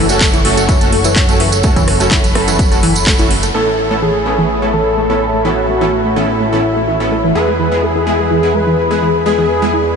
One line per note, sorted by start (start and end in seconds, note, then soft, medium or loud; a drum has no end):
0.00 3.52 F#1 medium
0.00 3.50 A4 medium
0.00 3.51 C#5 medium
0.00 3.50 F#5 medium
0.00 1.62 C#6 medium
0.09 0.19 A3 medium
0.09 0.19 C#4 medium
0.09 0.19 F#4 medium
0.09 0.19 A4 medium
0.09 closed hi-hat soft
0.09 tambourine medium
0.21 0.27 A3 medium
0.21 kick loud
0.21 clap loud
0.21 closed hi-hat medium
0.21 tambourine medium
0.34 0.42 E3 loud
0.34 closed hi-hat soft
0.34 tambourine soft
0.45 0.78 A3 medium
0.45 0.78 C#4 medium
0.45 0.78 F#4 medium
0.45 0.78 A4 loud
0.45 open hi-hat medium
0.57 0.63 A3 medium
0.57 closed hi-hat soft
0.57 tambourine medium
0.69 0.78 E3 loud
0.69 kick loud
0.69 closed hi-hat medium
0.69 tambourine medium
0.81 0.90 A3 medium
0.81 0.90 C#4 medium
0.81 0.90 F#4 medium
0.81 0.90 A4 medium
0.81 closed hi-hat soft
0.81 tambourine soft
0.92 0.98 A3 medium
0.92 open hi-hat loud
1.04 1.13 E3 loud
1.04 closed hi-hat soft
1.04 tambourine medium
1.16 kick loud
1.16 clap loud
1.16 closed hi-hat medium
1.16 tambourine medium
1.28 1.34 A3 medium
1.28 1.43 A3 medium
1.28 1.43 C#4 medium
1.28 1.43 F#4 medium
1.28 1.43 A4 medium
1.28 closed hi-hat soft
1.28 tambourine soft
1.40 1.49 E3 loud
1.40 open hi-hat medium
1.52 closed hi-hat soft
1.52 tambourine medium
1.63 1.70 A3 medium
1.63 1.97 A3 medium
1.63 1.97 C#4 medium
1.63 1.97 F#4 medium
1.63 1.97 A4 loud
1.63 3.52 B5 medium
1.63 kick loud
1.63 closed hi-hat medium
1.63 tambourine medium
1.76 1.85 E3 loud
1.76 kick medium
1.76 closed hi-hat soft
1.76 tambourine soft
1.88 cross-stick medium
1.88 open hi-hat loud
2.00 2.06 A3 medium
2.00 2.09 A3 medium
2.00 2.09 C#4 medium
2.00 2.09 F#4 medium
2.00 2.09 A4 medium
2.00 closed hi-hat soft
2.00 tambourine medium
2.11 2.21 E3 loud
2.11 kick loud
2.11 clap loud
2.11 closed hi-hat medium
2.11 tambourine medium
2.24 closed hi-hat soft
2.24 tambourine soft
2.35 2.41 A3 medium
2.35 2.69 A3 medium
2.35 2.69 C#4 medium
2.35 2.69 F#4 medium
2.35 2.69 A4 medium
2.35 cross-stick medium
2.35 open hi-hat medium
2.48 2.56 E3 loud
2.48 closed hi-hat soft
2.48 tambourine medium
2.59 kick loud
2.59 closed hi-hat medium
2.59 tambourine medium
2.72 2.77 A3 medium
2.72 2.81 A3 medium
2.72 2.81 C#4 medium
2.72 2.81 F#4 medium
2.72 2.81 A4 medium
2.72 closed hi-hat soft
2.72 tambourine soft
2.83 2.92 E3 loud
2.83 open hi-hat loud
2.95 closed hi-hat soft
2.95 tambourine medium
3.06 3.13 A3 medium
3.06 kick loud
3.06 clap loud
3.06 closed hi-hat medium
3.06 tambourine medium
3.18 3.27 E3 loud
3.18 3.34 A3 medium
3.18 3.34 C#4 medium
3.18 3.34 F#4 medium
3.18 3.34 A4 medium
3.18 closed hi-hat soft
3.18 tambourine soft
3.31 open hi-hat medium
3.43 3.49 A3 medium
3.43 closed hi-hat soft
3.43 tambourine medium
3.54 7.33 A1 medium
3.54 3.88 A2 medium
3.54 3.60 A3 medium
3.54 7.32 A3 medium
3.54 3.88 B3 medium
3.54 3.88 C#4 medium
3.54 3.88 E4 medium
3.54 3.97 A4 loud
3.54 3.88 A4 loud
3.54 7.32 C#5 medium
3.54 9.22 E5 medium
3.54 7.32 B5 medium
3.67 3.75 E3 loud
3.91 4.00 A2 medium
3.91 3.96 A3 medium
3.91 4.00 B3 medium
3.91 4.00 C#4 medium
3.91 4.00 E4 medium
3.91 4.00 A4 medium
4.02 4.11 E3 loud
4.02 4.64 G#4 medium
4.26 4.59 A2 medium
4.26 4.32 A3 medium
4.26 4.59 A3 loud
4.26 4.59 B3 medium
4.26 4.59 C#4 medium
4.26 4.59 E4 medium
4.38 4.46 E3 loud
4.62 4.71 A2 medium
4.62 4.68 A3 medium
4.62 4.71 B3 medium
4.62 4.71 C#4 medium
4.62 4.71 E4 medium
4.62 4.71 A4 medium
4.73 4.82 E3 loud
4.73 5.46 A4 medium
4.97 5.03 A3 medium
5.10 5.24 A2 medium
5.10 5.18 E3 loud
5.10 5.24 B3 medium
5.10 5.24 C#4 medium
5.10 5.24 E4 medium
5.10 5.24 A4 medium
5.34 5.39 A3 medium
5.45 5.78 A2 medium
5.45 5.54 E3 loud
5.45 5.78 B3 medium
5.45 5.78 C#4 medium
5.45 5.78 E4 medium
5.45 6.18 F#4 medium
5.45 5.78 A4 loud
5.69 5.75 A3 medium
5.81 5.90 A2 medium
5.81 5.89 E3 loud
5.81 5.90 B3 medium
5.81 5.90 C#4 medium
5.81 5.90 E4 medium
5.81 5.90 A4 medium
6.05 6.10 A3 medium
6.16 6.50 A2 medium
6.16 6.25 E3 loud
6.16 6.50 B3 medium
6.16 6.50 C#4 medium
6.16 7.37 E4 loud
6.16 6.50 E4 medium
6.16 6.50 A4 medium
6.40 6.46 A3 medium
6.53 6.62 A2 medium
6.53 6.61 E3 loud
6.53 6.62 B3 medium
6.53 6.62 C#4 medium
6.53 6.62 E4 medium
6.53 6.62 A4 medium
6.76 6.82 A3 medium
6.88 6.97 E3 loud
7.00 7.15 A2 medium
7.00 7.15 B3 medium
7.00 7.15 C#4 medium
7.00 7.15 E4 medium
7.00 7.15 A4 medium
7.12 7.18 A3 medium
7.24 7.32 E3 loud
7.35 9.96 E2 medium
7.35 7.69 G#3 medium
7.35 7.69 B3 medium
7.35 7.69 E4 medium
7.35 7.69 G#4 loud
7.35 9.96 G#4 medium
7.35 7.84 B4 loud
7.35 9.96 B4 medium
7.35 9.96 B5 medium
7.48 7.53 G#3 medium
7.59 7.68 E3 loud
7.72 7.81 G#3 medium
7.72 7.81 B3 medium
7.72 7.81 E4 medium
7.72 7.81 G#4 medium
7.83 7.89 G#3 medium
7.83 8.56 G#4 loud
7.95 8.04 E3 loud
8.07 8.40 G#3 medium
8.07 8.40 B3 medium
8.07 8.40 E4 medium
8.07 8.40 G#4 loud
8.19 8.25 G#3 medium
8.31 8.40 E3 loud
8.43 8.52 G#3 medium
8.43 8.52 B3 medium
8.43 8.52 E4 medium
8.43 8.52 G#4 medium
8.54 8.60 G#3 medium
8.54 9.17 B4 medium
8.67 8.75 E3 loud
8.91 8.96 G#3 medium
8.91 9.05 G#3 medium
8.91 9.05 B3 medium
8.91 9.05 E4 medium
8.91 9.05 G#4 medium
9.02 9.11 E3 loud
9.26 9.32 G#3 medium
9.26 9.59 G#3 medium
9.26 9.59 B3 medium
9.26 9.59 E4 medium
9.26 9.59 G#4 loud
9.26 9.88 G#4 medium
9.26 9.96 D5 medium
9.38 9.46 E3 loud
9.62 9.68 G#3 medium
9.62 9.71 G#3 medium
9.62 9.71 B3 medium
9.62 9.71 E4 medium
9.62 9.71 G#4 medium
9.73 9.82 E3 loud